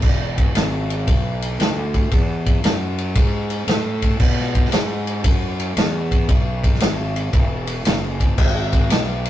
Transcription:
0.02 E1, kick, crash
0.38 kick, ride
0.54 G#1, snare, ride
0.90 ride
1.07 B1, kick, ride
1.42 ride
1.59 D2, snare, ride
1.94 kick, ride
2.11 E2, kick, ride
2.46 kick, ride
2.64 F#2, snare, ride
2.98 ride
3.15 G#2, kick, ride
3.50 ride
3.67 A2, snare, ride
4.02 kick, ride
4.20 B2, kick, crash
4.39 snare
4.55 kick, ride
4.65 snare
4.72 G#2, snare, ride
5.07 ride
5.24 F#2, kick, ride
5.59 ride
5.77 E2, snare, ride
6.11 kick, ride
6.29 B1, kick, ride
6.64 kick, ride
6.74 snare
6.80 G#1, snare, ride
7.16 ride
7.33 E1, kick, ride
7.67 ride
7.85 F#1, snare, ride
8.20 kick, ride
8.38 G#1, kick, crash
8.73 kick, ride
8.89 B1, snare, ride
9.25 ride

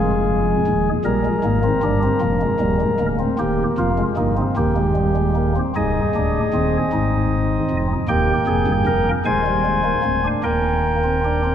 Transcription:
Already playing: F1 F2 G#3 G#4
0.67 D#1 D#2
1.05 A#1 A#2 G3 A#4
1.25 G#3
1.44 G#1 G#2 A#3
1.64 C4
1.83 G1 G2 D4
2.03 C4
2.21 F1 F2 A#3
2.41 G#3
2.60 D#1 D#2 G3
2.81 G#3
3.00 D1 D2 A#3
3.19 C4
3.39 D#1 D#2 A#3 G4
3.78 F1 F2 F4
3.98 G#3
4.17 G1 G2 A#3 D#4
4.37 C4
4.57 D#1 D#2 A#3 G4
4.76 G#3
4.96 G3
5.16 G#3
5.35 A#3
5.56 C4
5.76 C1 C2 D#4 G#4 D#5
6.15 D1 D2 D4
6.54 D#1 D#2 C4
6.93 G#1 G#2 D#4
7.70 F1 F2
8.08 D#1 D#2 A#3 G4 G5
8.47 F1 F2 G#4
8.67 G1 G2
8.86 F1 F2 A#4
9.25 D#1 D#2 G#3 C5 G#5
9.46 G3
9.65 G#3
9.84 A#3
10.04 D1 D2 C4
10.24 D4
10.44 D#1 D#2 A#3 A#4 G5
11.04 C4
11.25 D4
11.44 C4

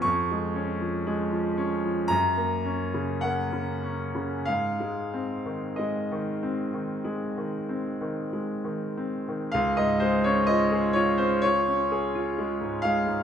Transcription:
0.02 F2 C#6
0.31 G#3
0.56 C#4
0.81 F3
1.07 G#3
1.32 F3
1.57 C#4
1.85 F3
2.08 F#2 A#5
2.37 A#3
2.65 C#4
2.94 C#3
3.21 A#3 F#5
3.52 C#3
3.83 C#4
4.15 C#3
4.45 G#2 F5
4.80 G#3
5.14 C4
5.46 D#3
5.76 G#3 D#5
6.12 D#3
6.43 C4
6.74 D#3
7.04 G#3
7.37 D#3
7.69 C4
8.01 D#3
8.33 G#3
8.64 D#3
8.97 C4
9.28 D#3
9.52 C#2 F5
9.77 G#2 D#5
10.00 G#3 C5
10.24 C#4 C#5
10.47 F4 D#5
10.72 G#4
10.93 F4 C#5
11.18 C#4 C5
11.42 F4 C#5
11.68 C#4
11.92 G#4
12.15 F4
12.38 G#3
12.61 G#2
12.82 G#3 F5
13.07 G#2

